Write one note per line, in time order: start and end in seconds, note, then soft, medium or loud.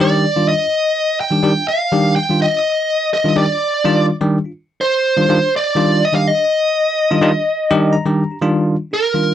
0.00 0.24 D#3 medium
0.00 0.24 G3 medium
0.00 0.25 D4 medium
0.00 0.25 G4 loud
0.00 0.48 D5 medium
0.36 0.53 D#3 medium
0.36 0.53 G3 medium
0.36 0.53 D4 medium
0.36 0.53 F4 medium
0.49 1.20 D#5 medium
1.21 1.68 G5 medium
1.31 1.40 D#3 medium
1.31 1.40 G3 medium
1.31 1.40 D4 medium
1.31 1.40 G4 medium
1.43 1.52 D#3 medium
1.43 1.52 G3 medium
1.43 1.52 D4 medium
1.43 1.52 G4 medium
1.55 1.62 D4 soft
1.68 2.15 F5 medium
1.92 2.17 D#3 medium
1.92 2.17 G3 medium
1.92 2.17 D4 medium
1.92 2.17 G4 medium
2.16 2.39 G5 loud
2.29 2.45 D#3 medium
2.29 2.45 G3 medium
2.29 2.46 D4 medium
2.29 2.46 F4 medium
2.42 3.09 D#5 medium
2.54 2.59 D4 soft
2.54 2.59 F4 soft
3.14 3.37 D#5 medium
3.24 3.33 D#3 medium
3.24 3.33 G3 medium
3.24 3.33 D4 medium
3.24 3.33 F4 medium
3.36 3.45 D#3 medium
3.36 3.45 G3 medium
3.36 3.45 D4 medium
3.36 3.45 G4 medium
3.36 4.05 D5 medium
3.84 4.09 D#3 medium
3.84 4.09 G3 medium
3.84 4.09 D4 medium
3.84 4.10 F4 loud
4.21 4.37 D#3 medium
4.21 4.37 G3 medium
4.21 4.37 D4 medium
4.21 4.37 G4 medium
4.44 4.50 D4 soft
4.44 4.51 F4 soft
4.81 5.55 C5 medium
5.17 5.25 D#3 medium
5.17 5.25 G3 medium
5.17 5.25 D4 medium
5.17 5.25 F4 medium
5.29 5.38 D#3 medium
5.29 5.37 G3 medium
5.29 5.38 D4 medium
5.29 5.38 F4 medium
5.56 6.04 D5 medium
5.75 6.01 D#3 medium
5.75 6.01 G3 medium
5.75 6.01 D4 medium
5.75 6.02 F4 medium
6.05 6.15 D#5 loud
6.13 6.29 D#3 medium
6.13 6.30 G3 medium
6.13 6.30 D4 medium
6.13 6.30 G4 medium
6.13 6.27 F5 medium
6.27 7.95 D#5 medium
6.38 6.44 D4 soft
6.38 6.44 G4 soft
7.11 7.18 D#3 medium
7.11 7.19 G3 medium
7.11 7.18 D4 medium
7.11 7.19 F4 loud
7.21 7.30 D#3 loud
7.21 7.30 G3 loud
7.21 7.30 D4 medium
7.21 7.31 F4 loud
7.35 7.40 D4 soft
7.35 7.41 G4 soft
7.71 7.95 D#3 loud
7.71 7.95 G3 medium
7.71 7.95 D4 loud
7.71 7.95 G4 loud
7.93 8.38 A#5 medium
8.06 8.22 D#3 medium
8.06 8.22 G3 medium
8.06 8.22 D4 medium
8.06 8.23 G4 medium
8.30 8.36 D4 soft
8.30 8.37 G4 soft
8.41 8.75 D#3 medium
8.41 8.75 G3 medium
8.41 8.75 D4 medium
8.41 8.75 F4 loud
8.91 8.97 D4 soft
8.91 8.97 G4 soft
8.91 9.34 A#4 medium
9.14 9.34 D#3 medium
9.14 9.34 G3 medium
9.14 9.34 D4 medium
9.14 9.34 F4 medium